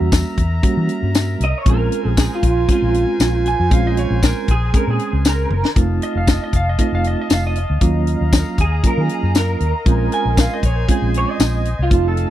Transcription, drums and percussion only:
0.12 kick medium
0.12 snare loud
0.12 closed hi-hat medium
0.12 tambourine loud
0.38 kick medium
0.38 closed hi-hat medium
0.63 kick medium
0.63 closed hi-hat medium
0.89 closed hi-hat medium
1.15 snare loud
1.15 closed hi-hat medium
1.15 tambourine loud
1.41 closed hi-hat medium
1.66 kick loud
1.66 closed hi-hat medium
1.92 closed hi-hat medium
2.17 kick medium
2.17 snare loud
2.17 closed hi-hat medium
2.17 tambourine loud
2.43 kick medium
2.43 closed hi-hat medium
2.69 kick medium
2.69 closed hi-hat medium
2.94 closed hi-hat medium
3.20 snare loud
3.20 closed hi-hat medium
3.20 tambourine loud
3.46 closed hi-hat medium
3.71 kick loud
3.71 closed hi-hat medium
3.97 closed hi-hat medium
4.23 kick medium
4.23 snare loud
4.23 closed hi-hat medium
4.23 tambourine loud
4.48 kick medium
4.48 closed hi-hat medium
4.74 kick medium
4.74 closed hi-hat medium
4.99 closed hi-hat medium
5.25 snare loud
5.25 closed hi-hat medium
5.25 tambourine loud
5.51 high tom medium
5.65 snare medium
5.76 kick loud
5.76 closed hi-hat medium
6.02 closed hi-hat medium
6.27 kick medium
6.27 snare loud
6.27 closed hi-hat medium
6.27 tambourine loud
6.53 kick medium
6.53 closed hi-hat medium
6.79 kick medium
6.79 closed hi-hat medium
7.04 closed hi-hat medium
7.30 snare loud
7.30 closed hi-hat medium
7.30 tambourine loud
7.56 closed hi-hat medium
7.81 kick loud
7.81 closed hi-hat medium
8.07 closed hi-hat medium
8.33 kick medium
8.33 snare loud
8.33 closed hi-hat medium
8.33 tambourine loud
8.58 kick medium
8.58 closed hi-hat medium
8.84 kick medium
8.84 closed hi-hat medium
9.09 closed hi-hat medium
9.35 snare loud
9.35 closed hi-hat medium
9.35 tambourine loud
9.60 closed hi-hat medium
9.86 kick loud
9.86 closed hi-hat medium
10.12 closed hi-hat medium
10.37 kick medium
10.37 snare loud
10.37 closed hi-hat medium
10.37 tambourine loud
10.63 kick medium
10.63 closed hi-hat medium
10.89 kick medium
10.89 closed hi-hat medium
11.14 closed hi-hat medium
11.40 snare loud
11.40 closed hi-hat medium
11.40 tambourine loud
11.65 closed hi-hat medium
11.91 kick loud
11.91 closed hi-hat medium
12.17 closed hi-hat medium

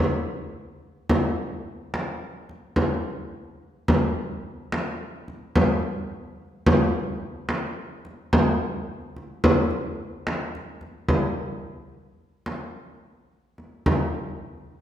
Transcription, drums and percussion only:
1.09 frame drum medium
1.94 frame drum soft
2.49 frame drum soft
2.76 frame drum medium
3.88 frame drum medium
4.72 frame drum medium
5.28 frame drum soft
5.55 frame drum medium
6.66 frame drum medium
7.49 frame drum medium
8.05 frame drum soft
8.33 frame drum medium
9.16 frame drum soft
9.44 frame drum medium
9.71 frame drum soft
10.27 frame drum medium
10.55 frame drum soft
10.81 frame drum soft
11.08 frame drum medium
12.46 frame drum soft
13.58 frame drum soft
13.86 frame drum medium

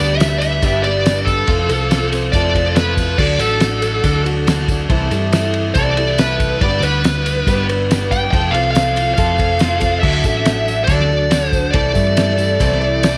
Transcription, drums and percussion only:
0.20 snare loud
0.20 ride loud
0.20 tambourine loud
0.42 ride medium
0.42 tambourine medium
0.62 kick loud
0.62 ride loud
0.62 tambourine medium
0.84 ride medium
1.06 snare loud
1.06 ride loud
1.06 tambourine loud
1.27 kick medium
1.27 snare soft
1.27 ride medium
1.27 tambourine medium
1.47 kick loud
1.47 ride loud
1.69 ride medium
1.69 tambourine medium
1.91 snare loud
1.91 ride loud
1.91 tambourine medium
2.12 ride medium
2.12 tambourine medium
2.33 kick loud
2.33 ride loud
2.33 tambourine medium
2.55 kick medium
2.55 ride medium
2.55 tambourine soft
2.76 snare loud
2.76 ride loud
2.76 tambourine medium
2.97 kick medium
2.97 snare soft
2.97 ride medium
2.97 tambourine medium
3.18 kick loud
3.18 crash loud
3.39 ride medium
3.39 tambourine medium
3.60 snare loud
3.60 ride loud
3.60 tambourine loud
3.82 ride medium
3.82 tambourine medium
4.04 kick loud
4.04 ride loud
4.04 tambourine medium
4.26 ride medium
4.47 snare loud
4.47 ride loud
4.47 tambourine loud
4.59 snare soft
4.68 kick medium
4.68 ride medium
4.68 tambourine medium
4.90 kick loud
4.90 ride loud
5.11 ride medium
5.11 tambourine medium
5.32 snare loud
5.32 ride loud
5.32 tambourine loud
5.54 ride medium
5.75 kick loud
5.75 ride loud
5.75 tambourine medium
5.97 ride medium
6.18 snare loud
6.18 ride loud
6.18 tambourine loud
6.40 kick medium
6.40 ride medium
6.40 tambourine medium
6.61 kick loud
6.61 ride loud
6.82 ride medium
6.82 tambourine medium
7.04 snare loud
7.04 ride loud
7.04 tambourine medium
7.26 ride medium
7.26 tambourine medium
7.47 kick loud
7.47 ride loud
7.47 tambourine medium
7.69 ride medium
7.91 snare loud
7.91 ride loud
7.91 tambourine loud
8.11 kick medium
8.11 ride medium
8.11 tambourine medium
8.33 kick loud
8.33 ride loud
8.33 tambourine soft
8.54 ride medium
8.75 snare loud
8.75 ride loud
8.75 tambourine loud
8.96 ride medium
8.96 tambourine medium
9.17 kick loud
9.17 ride loud
9.17 tambourine medium
9.38 kick medium
9.38 ride medium
9.38 tambourine soft
9.59 snare loud
9.59 ride loud
9.59 tambourine loud
9.81 kick medium
9.81 snare soft
9.81 ride medium
9.81 tambourine medium
10.03 kick loud
10.03 crash loud
10.24 kick medium
10.24 tambourine medium
10.46 snare loud
10.46 ride bell medium
10.46 tambourine loud
10.68 tambourine medium
10.87 kick loud
10.87 ride bell medium
10.87 tambourine medium
11.00 snare soft
11.31 snare loud
11.31 ride bell medium
11.31 tambourine loud
11.53 kick medium
11.53 tambourine medium
11.74 kick loud
11.74 ride bell medium
11.95 kick medium
11.95 tambourine medium
12.17 snare loud
12.17 ride bell medium
12.17 tambourine medium
12.29 snare soft
12.38 tambourine medium
12.60 kick loud
12.60 ride bell medium
12.60 tambourine medium
12.72 snare soft
13.03 snare loud
13.03 ride bell medium
13.03 tambourine loud

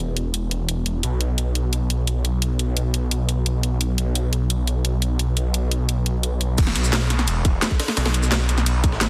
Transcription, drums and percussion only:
0.17 closed hi-hat medium
0.34 closed hi-hat medium
0.51 closed hi-hat medium
0.69 closed hi-hat medium
0.86 closed hi-hat medium
1.03 closed hi-hat medium
1.21 closed hi-hat medium
1.38 closed hi-hat medium
1.55 closed hi-hat medium
1.73 closed hi-hat medium
1.90 closed hi-hat medium
2.07 closed hi-hat medium
2.25 closed hi-hat medium
2.42 closed hi-hat medium
2.59 closed hi-hat medium
2.77 closed hi-hat medium
2.94 closed hi-hat medium
3.11 closed hi-hat medium
3.29 closed hi-hat medium
3.46 closed hi-hat medium
3.63 closed hi-hat medium
3.81 closed hi-hat medium
3.98 closed hi-hat medium
4.15 closed hi-hat medium
4.33 closed hi-hat medium
4.50 closed hi-hat loud
4.67 closed hi-hat medium
4.85 closed hi-hat medium
5.02 closed hi-hat medium
5.19 closed hi-hat medium
5.37 closed hi-hat medium
5.54 closed hi-hat medium
5.71 closed hi-hat medium
5.89 closed hi-hat medium
6.06 closed hi-hat medium
6.23 closed hi-hat medium
6.41 closed hi-hat medium
6.58 kick loud
6.58 closed hi-hat loud
6.58 crash loud
6.58 ride medium
6.58 shaker soft
6.67 snare soft
6.76 closed hi-hat medium
6.76 ride medium
6.76 shaker soft
6.84 shaker medium
6.93 snare loud
6.93 closed hi-hat medium
6.93 open hi-hat medium
6.93 shaker soft
7.02 snare medium
7.10 snare soft
7.10 closed hi-hat medium
7.10 ride medium
7.10 shaker soft
7.19 snare soft
7.19 shaker soft
7.28 closed hi-hat loud
7.28 ride medium
7.28 shaker medium
7.45 kick loud
7.45 closed hi-hat medium
7.45 ride medium
7.45 shaker soft
7.62 snare loud
7.62 closed hi-hat medium
7.62 ride medium
7.62 shaker soft
7.71 kick medium
7.71 ride soft
7.80 snare loud
7.80 closed hi-hat medium
7.80 open hi-hat medium
7.88 snare loud
7.88 snare medium
7.88 open hi-hat medium
7.97 snare loud
7.97 closed hi-hat medium
7.97 open hi-hat medium
7.97 shaker soft
8.06 snare loud
8.06 snare soft
8.06 open hi-hat medium
8.14 closed hi-hat medium
8.14 ride medium
8.14 shaker soft
8.23 snare soft
8.23 shaker medium
8.32 snare loud
8.32 closed hi-hat loud
8.32 ride medium
8.32 shaker soft
8.49 closed hi-hat medium
8.49 ride medium
8.49 shaker soft
8.58 snare soft
8.58 ride soft
8.58 shaker soft
8.66 closed hi-hat medium
8.66 ride medium
8.66 shaker soft
8.84 kick loud
8.84 closed hi-hat medium
8.84 ride medium
8.84 shaker soft
8.92 snare medium
9.01 snare loud
9.01 closed hi-hat medium
9.01 ride medium
9.01 shaker soft

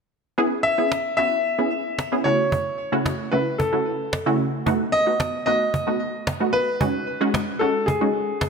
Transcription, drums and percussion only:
0.92 cajon slap loud
1.99 cajon slap loud
2.52 cajon bass loud
3.06 cajon bass loud
3.06 cajon slap loud
3.60 cajon bass loud
4.13 cajon bass loud
4.13 cajon slap loud
4.67 cajon bass loud
5.20 cajon bass loud
5.20 cajon slap loud
5.74 cajon bass loud
6.27 cajon bass loud
6.27 cajon slap loud
6.81 cajon bass loud
7.34 cajon bass loud
7.34 cajon slap loud
7.88 cajon bass loud
8.41 cajon bass loud
8.41 cajon slap loud

